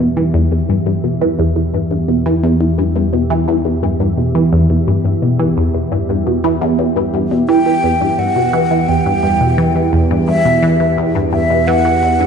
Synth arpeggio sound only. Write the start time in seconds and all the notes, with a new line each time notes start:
0.00 B2
0.17 E3
0.34 E2
0.52 E2
0.69 G2
0.86 G2
1.04 B2
1.21 E3
1.39 E2
1.56 E2
1.74 G2
1.91 G2
2.08 B2
2.26 E3
2.43 E2
2.61 E2
2.78 G2
2.96 G2
3.13 B2
3.30 E3
3.48 E2
3.65 E2
3.83 G2
4.00 G2
4.18 B2
4.35 E3
4.53 E2
4.70 E2
4.87 G2
5.05 G2
5.22 B2
5.39 E3
5.57 E2
5.74 E2
5.92 G2
6.09 G2
6.27 B2
6.44 E3
6.61 E2
6.79 E2
6.96 G2
7.14 G2
7.31 B2
7.49 E3
7.66 E3
7.84 E2
8.01 G2
8.18 G2
8.36 B2
8.53 E3
8.71 E3
8.88 E2
9.06 G2
9.23 G2
9.41 B2
9.58 E3
9.75 E3
9.93 E2
10.11 G2
10.28 G2
10.45 B2
10.63 E3
10.80 E3
10.98 E2
11.15 G2
11.32 G2
11.50 B2
11.68 E3
11.85 E3
12.02 E2
12.20 G2